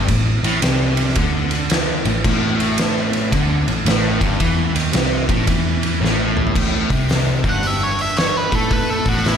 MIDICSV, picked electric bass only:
0, 0, Header, 1, 2, 480
1, 0, Start_track
1, 0, Tempo, 539568
1, 71, Time_signature, 4, 2, 24, 8
1, 8336, End_track
2, 0, Start_track
2, 0, Title_t, "Picked electric bass"
2, 0, Program_c, 0, 34
2, 72, Note_on_c, 0, 33, 79
2, 363, Note_off_c, 0, 33, 0
2, 387, Note_on_c, 0, 33, 91
2, 542, Note_off_c, 0, 33, 0
2, 557, Note_on_c, 0, 36, 89
2, 1002, Note_off_c, 0, 36, 0
2, 1037, Note_on_c, 0, 38, 96
2, 1793, Note_off_c, 0, 38, 0
2, 1826, Note_on_c, 0, 33, 79
2, 1983, Note_off_c, 0, 33, 0
2, 1996, Note_on_c, 0, 33, 86
2, 2920, Note_off_c, 0, 33, 0
2, 2954, Note_on_c, 0, 38, 96
2, 3245, Note_off_c, 0, 38, 0
2, 3270, Note_on_c, 0, 33, 76
2, 3425, Note_off_c, 0, 33, 0
2, 3430, Note_on_c, 0, 33, 101
2, 3723, Note_off_c, 0, 33, 0
2, 3747, Note_on_c, 0, 31, 92
2, 3903, Note_off_c, 0, 31, 0
2, 3913, Note_on_c, 0, 40, 91
2, 4204, Note_off_c, 0, 40, 0
2, 4229, Note_on_c, 0, 39, 87
2, 4384, Note_off_c, 0, 39, 0
2, 4396, Note_on_c, 0, 36, 94
2, 4686, Note_off_c, 0, 36, 0
2, 4710, Note_on_c, 0, 33, 89
2, 4862, Note_off_c, 0, 33, 0
2, 4867, Note_on_c, 0, 40, 101
2, 5317, Note_off_c, 0, 40, 0
2, 5347, Note_on_c, 0, 33, 101
2, 5796, Note_off_c, 0, 33, 0
2, 5831, Note_on_c, 0, 33, 90
2, 6123, Note_off_c, 0, 33, 0
2, 6142, Note_on_c, 0, 36, 79
2, 6590, Note_off_c, 0, 36, 0
2, 6620, Note_on_c, 0, 31, 91
2, 7547, Note_off_c, 0, 31, 0
2, 7581, Note_on_c, 0, 45, 86
2, 8029, Note_off_c, 0, 45, 0
2, 8060, Note_on_c, 0, 33, 78
2, 8336, Note_off_c, 0, 33, 0
2, 8336, End_track
0, 0, End_of_file